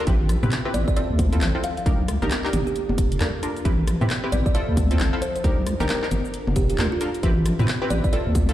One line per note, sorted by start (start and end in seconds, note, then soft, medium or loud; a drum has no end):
0.07 0.38 A1 medium
0.07 1.84 C4 medium
0.07 0.15 C4 medium
0.07 0.15 E4 medium
0.07 0.96 G4 medium
0.07 0.15 G4 medium
0.07 0.96 B4 medium
0.07 1.84 E5 medium
0.07 kick loud
0.07 closed hi-hat medium
0.07 cabasa soft
0.29 cross-stick medium
0.29 closed hi-hat loud
0.29 cabasa medium
0.43 0.49 A2 medium
0.43 0.51 C4 medium
0.43 0.51 E4 medium
0.43 0.51 G4 medium
0.43 0.51 B4 medium
0.43 high conga medium
0.43 cabasa soft
0.52 clap loud
0.52 closed hi-hat medium
0.52 cabasa soft
0.65 0.94 C4 medium
0.65 0.94 E4 medium
0.65 0.94 G4 medium
0.65 0.94 B4 loud
0.65 cross-stick soft
0.74 0.84 A1 medium
0.74 0.83 D5 medium
0.74 closed hi-hat medium
0.74 high conga medium
0.74 cabasa medium
0.88 0.93 D5 medium
0.88 kick loud
0.88 cabasa soft
0.96 1.85 F3 medium
0.96 1.29 C4 medium
0.96 1.29 E4 medium
0.96 1.29 F4 medium
0.96 1.85 A4 medium
0.96 1.29 A4 medium
0.96 1.15 D5 loud
0.96 closed hi-hat medium
0.96 cabasa soft
1.10 1.38 D2 loud
1.19 kick loud
1.19 closed hi-hat loud
1.19 high conga medium
1.19 cabasa medium
1.33 1.52 C4 medium
1.33 1.52 E4 medium
1.33 1.52 F4 medium
1.33 1.52 A4 loud
1.33 closed hi-hat medium
1.33 cabasa soft
1.41 1.52 A1 medium
1.41 clap loud
1.41 closed hi-hat medium
1.41 cabasa soft
1.55 1.63 C4 medium
1.55 1.63 E4 medium
1.55 1.63 F4 medium
1.55 1.63 A4 loud
1.64 1.73 F5 medium
1.64 closed hi-hat loud
1.64 cabasa medium
1.77 1.83 F5 medium
1.77 closed hi-hat soft
1.77 cabasa soft
1.86 2.17 C2 loud
1.86 3.63 D4 medium
1.86 1.99 D4 medium
1.86 1.99 D#4 medium
1.86 1.99 G4 medium
1.86 1.99 A#4 medium
1.86 kick loud
1.86 closed hi-hat medium
1.86 cabasa soft
2.08 cross-stick medium
2.08 closed hi-hat loud
2.08 cabasa medium
2.22 2.29 G1 medium
2.22 2.41 D4 loud
2.22 2.41 D#4 medium
2.22 2.41 G4 medium
2.22 2.41 A#4 loud
2.22 high conga medium
2.22 cabasa soft
2.31 clap loud
2.31 closed hi-hat medium
2.31 cabasa soft
2.44 2.50 D4 medium
2.44 2.50 D#4 medium
2.44 2.50 G4 medium
2.44 2.50 A#4 loud
2.44 cross-stick soft
2.44 clap medium
2.53 2.63 G1 medium
2.53 3.64 A#3 medium
2.53 3.64 F4 medium
2.53 2.62 G4 medium
2.53 3.64 A4 medium
2.53 closed hi-hat loud
2.53 high conga medium
2.53 cabasa medium
2.67 2.72 G4 medium
2.67 cabasa soft
2.76 closed hi-hat medium
2.76 cabasa soft
2.89 3.17 F1 medium
2.89 high conga medium
2.98 kick loud
2.98 closed hi-hat loud
2.98 cabasa medium
3.12 closed hi-hat medium
3.12 cabasa soft
3.20 3.31 D2 medium
3.20 3.29 D4 medium
3.20 3.29 F4 medium
3.20 3.29 A4 medium
3.20 3.29 A#4 medium
3.20 clap loud
3.20 closed hi-hat medium
3.20 cabasa soft
3.43 3.51 D4 medium
3.43 3.51 F4 medium
3.43 3.51 A4 medium
3.43 3.51 A#4 medium
3.43 closed hi-hat medium
3.43 cabasa medium
3.56 closed hi-hat soft
3.56 cabasa soft
3.65 3.96 A1 loud
3.65 3.73 C4 medium
3.65 5.42 C4 medium
3.65 3.73 E4 medium
3.65 3.73 G4 medium
3.65 4.54 G4 medium
3.65 3.73 B4 medium
3.65 4.54 B4 medium
3.65 5.42 E5 medium
3.65 kick loud
3.65 closed hi-hat medium
3.65 cabasa soft
3.88 cross-stick medium
3.88 closed hi-hat loud
3.88 cabasa medium
4.01 4.08 A2 medium
4.01 4.10 C4 medium
4.01 4.10 E4 medium
4.01 4.10 G4 medium
4.01 4.10 B4 medium
4.01 high conga medium
4.01 cabasa soft
4.10 clap loud
4.10 closed hi-hat medium
4.10 cabasa soft
4.24 4.53 C4 medium
4.24 4.53 E4 medium
4.24 4.53 G4 medium
4.24 4.53 B4 loud
4.24 cross-stick soft
4.32 4.43 A1 medium
4.32 4.41 D5 medium
4.32 closed hi-hat medium
4.32 high conga medium
4.32 cabasa medium
4.46 4.52 D5 medium
4.46 kick loud
4.46 cabasa soft
4.55 5.43 F3 medium
4.55 4.88 C4 medium
4.55 4.88 E4 medium
4.55 4.88 F4 medium
4.55 5.43 A4 medium
4.55 4.88 A4 loud
4.55 4.73 D5 loud
4.55 closed hi-hat medium
4.55 cabasa soft
4.68 4.96 D2 medium
4.77 kick loud
4.77 closed hi-hat loud
4.77 high conga medium
4.77 cabasa medium
4.91 5.10 C4 medium
4.91 5.10 E4 medium
4.91 5.10 F4 medium
4.91 5.10 A4 loud
4.91 closed hi-hat medium
4.91 cabasa soft
4.99 5.10 A1 medium
4.99 clap loud
4.99 closed hi-hat medium
4.99 cabasa soft
5.13 5.22 C4 medium
5.13 5.22 E4 medium
5.13 5.22 F4 medium
5.13 5.22 A4 medium
5.22 5.31 C5 medium
5.22 closed hi-hat medium
5.22 cabasa medium
5.36 5.41 C5 medium
5.36 closed hi-hat soft
5.36 cabasa soft
5.44 5.75 C2 loud
5.44 5.57 D4 medium
5.44 5.57 D#4 medium
5.44 5.57 G4 medium
5.44 7.21 A#4 loud
5.44 5.57 A#4 medium
5.44 kick loud
5.44 closed hi-hat medium
5.44 cabasa soft
5.67 cross-stick medium
5.67 closed hi-hat loud
5.67 cabasa medium
5.80 5.87 G1 medium
5.80 5.99 D4 loud
5.80 5.99 D#4 medium
5.80 5.99 G4 loud
5.80 5.99 A#4 loud
5.80 5.86 A#4 medium
5.80 high conga medium
5.80 cabasa soft
5.89 5.98 A#4 medium
5.89 clap loud
5.89 closed hi-hat medium
5.89 cabasa soft
6.03 6.08 D4 medium
6.03 6.08 D#4 medium
6.03 6.08 G4 medium
6.03 6.08 A#4 medium
6.03 cross-stick soft
6.03 clap medium
6.11 6.22 G1 loud
6.11 7.22 D4 medium
6.11 7.22 F4 medium
6.11 7.22 A4 medium
6.11 closed hi-hat medium
6.11 high conga medium
6.11 cabasa medium
6.25 cabasa soft
6.34 closed hi-hat medium
6.34 cabasa soft
6.47 6.75 F1 loud
6.47 high conga medium
6.56 6.65 G4 medium
6.56 kick loud
6.56 closed hi-hat loud
6.56 cabasa medium
6.70 6.76 G4 medium
6.70 closed hi-hat medium
6.70 cabasa soft
6.78 6.89 D2 medium
6.78 6.87 D4 medium
6.78 6.87 F4 medium
6.78 6.87 A4 medium
6.78 6.87 A#4 medium
6.78 clap loud
6.78 closed hi-hat medium
6.78 cabasa soft
6.92 7.23 F4 medium
7.01 7.09 D4 medium
7.01 7.09 F4 medium
7.01 7.09 A4 medium
7.01 7.09 A#4 medium
7.01 closed hi-hat medium
7.01 cabasa medium
7.15 closed hi-hat soft
7.15 cabasa soft
7.23 7.54 A1 medium
7.23 8.53 C4 medium
7.23 7.32 C4 medium
7.23 7.32 E4 medium
7.23 8.12 G4 medium
7.23 7.32 G4 medium
7.23 8.12 B4 medium
7.23 7.32 B4 medium
7.23 8.53 E5 medium
7.23 kick loud
7.23 closed hi-hat medium
7.23 cabasa soft
7.46 cross-stick medium
7.46 closed hi-hat loud
7.46 cabasa medium
7.59 7.66 A2 medium
7.59 7.68 C4 medium
7.59 7.68 E4 medium
7.59 7.68 G4 medium
7.59 7.68 B4 medium
7.59 high conga medium
7.59 cabasa soft
7.68 clap loud
7.68 closed hi-hat medium
7.68 cabasa soft
7.82 8.11 C4 medium
7.82 8.11 E4 medium
7.82 8.11 G4 medium
7.82 8.11 B4 loud
7.82 cross-stick soft
7.90 8.01 A1 loud
7.90 7.99 D5 medium
7.90 closed hi-hat medium
7.90 high conga medium
7.90 cabasa medium
8.04 8.10 D5 medium
8.04 kick loud
8.04 cabasa soft
8.13 8.53 F3 medium
8.13 8.46 C4 medium
8.13 8.46 E4 medium
8.13 8.46 F4 medium
8.13 8.53 A4 medium
8.13 8.46 A4 medium
8.13 8.31 D5 medium
8.13 closed hi-hat medium
8.13 cabasa soft
8.27 8.53 D2 medium
8.35 kick loud
8.35 closed hi-hat loud
8.35 high conga medium
8.35 cabasa medium
8.49 8.53 C4 medium
8.49 8.53 E4 medium
8.49 8.53 F4 medium
8.49 8.53 A4 loud
8.49 closed hi-hat medium
8.49 cabasa soft